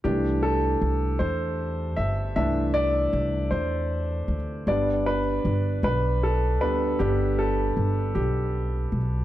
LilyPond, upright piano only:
<<
  \new Staff \with { instrumentName = "Upright piano" } { \time 6/8 \key c \major \tempo 4. = 52 g'8 a'4 c''4 e''8 | e''8 d''4 c''4 r8 | d''8 b'4 b'8 a'8 b'8 | g'8 a'4 g'4 r8 | }
  \new Staff \with { instrumentName = "Upright piano" } { \time 6/8 \key c \major <e a d'>8 r2 r8 | <e a d'>4. r4. | <g b d'>8 r2 <g b d'>8 | <g b d'>4. r4. | }
>>